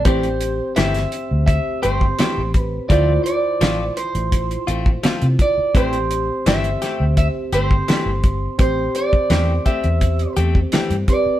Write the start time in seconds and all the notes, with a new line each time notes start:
0.05 A1 E3 A3 C4 G4 C5, kick, closed hi-hat
0.23 closed hi-hat
0.41 closed hi-hat
0.76 G1 E3 A3 C4 G4 E5, snare, closed hi-hat
0.94 snare, closed hi-hat
1.12 closed hi-hat
1.31 D2
1.47 E5, kick, closed hi-hat
1.82 G1 A3 C4 G4 C5, closed hi-hat
2.01 kick
2.19 E3 A3 C4 G4, snare, closed hi-hat
2.38 A1
2.54 B4, kick, closed hi-hat
2.89 D2 F3 A3 C4 E4 F4 C5 D5, kick, closed hi-hat
3.24 D5, closed hi-hat
3.61 A1 F3 A3 C4 F4, snare, closed hi-hat
3.97 C5, closed hi-hat
4.15 A1, closed hi-hat
4.32 kick, closed hi-hat
4.51 closed hi-hat
4.67 A1 A3 C4 F4, closed hi-hat
4.86 kick
5.03 F3 A3 C4 F4, snare, closed hi-hat
5.22 C3, closed hi-hat
5.39 D5, kick, closed hi-hat
5.58 muted fingered electric bass stroke
5.74 A1 E3 A3 C4 G4 C5, kick, closed hi-hat
5.93 closed hi-hat
6.11 closed hi-hat
6.46 G1 E3 A3 C4 G4 E5, snare, closed hi-hat
6.64 closed hi-hat
6.82 A3 C4 G4, snare, closed hi-hat
7.00 D2
7.17 E5, kick, closed hi-hat
7.52 G1 A3 C4 G4 C5, closed hi-hat
7.71 kick
7.88 E3 A3 C4 G4, snare, closed hi-hat
8.06 G1
8.24 kick, closed hi-hat
8.58 A1 C4 G4 C5, kick, closed hi-hat
8.95 D5, closed hi-hat
9.13 kick
9.30 E2 E3 A3 C4 G4, snare, closed hi-hat
9.66 A3 C4 G4 E5, kick, closed hi-hat
9.84 E2, closed hi-hat
10.01 kick, closed hi-hat
10.19 closed hi-hat
10.37 E2 A3 C4 G4, closed hi-hat
10.55 kick
10.72 E3 A3 C4 G4, snare, closed hi-hat
10.90 G2, closed hi-hat
11.08 C4 G4 B4 D5, kick, closed hi-hat
11.26 muted fingered electric bass stroke